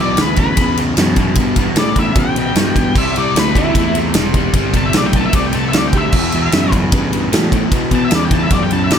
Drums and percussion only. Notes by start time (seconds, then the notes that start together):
0.17 snare, ride
0.36 kick, ride
0.57 kick, ride
0.77 ride
0.97 snare, ride
1.16 kick, ride
1.35 kick, ride
1.56 kick, ride
1.76 snare, ride
1.96 kick, ride
2.15 kick, ride
2.36 ride
2.55 snare, ride
2.76 kick, ride
2.96 kick, crash
3.16 ride
3.36 snare, ride
3.55 kick, ride
3.75 kick, ride
3.95 ride
4.14 snare, ride
4.34 kick, ride
4.54 kick, ride
4.74 kick, ride
4.93 snare, ride
5.13 kick, ride
5.33 kick, ride
5.53 ride
5.73 snare, ride
5.93 kick, ride
6.12 kick, crash
6.32 ride
6.52 snare, ride
6.72 kick, ride
6.92 kick, ride
7.13 ride
7.33 snare, ride
7.52 kick, ride
7.72 kick, ride
7.91 kick, ride
8.11 snare, ride
8.31 kick, ride
8.50 kick, ride
8.70 ride
8.90 snare, ride